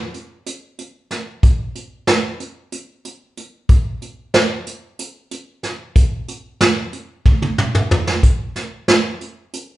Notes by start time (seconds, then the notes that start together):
0.14 closed hi-hat
0.46 closed hi-hat
0.79 closed hi-hat
1.11 snare, closed hi-hat
1.43 kick, closed hi-hat
1.75 closed hi-hat
2.07 snare, closed hi-hat
2.40 closed hi-hat
2.72 closed hi-hat
3.05 closed hi-hat
3.37 closed hi-hat
3.69 kick, closed hi-hat
4.02 closed hi-hat
4.34 snare, closed hi-hat
4.67 closed hi-hat
4.99 closed hi-hat
5.31 closed hi-hat
5.63 snare, closed hi-hat
5.96 kick, closed hi-hat
6.28 closed hi-hat
6.61 snare, closed hi-hat
6.93 closed hi-hat
7.26 kick, high tom
7.42 high tom
7.58 mid tom
7.75 mid tom
7.91 floor tom
8.07 snare
8.23 kick, closed hi-hat
8.56 snare, closed hi-hat
8.88 snare, closed hi-hat
9.21 closed hi-hat
9.53 closed hi-hat